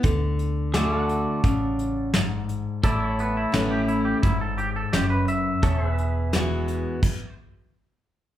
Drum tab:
CC |--------|--------|----x---|
HH |xxxxxxxx|xxxxxxxx|xxxx----|
SD |--o---o-|--o---o-|--o-----|
BD |o---o---|o---o---|o---o---|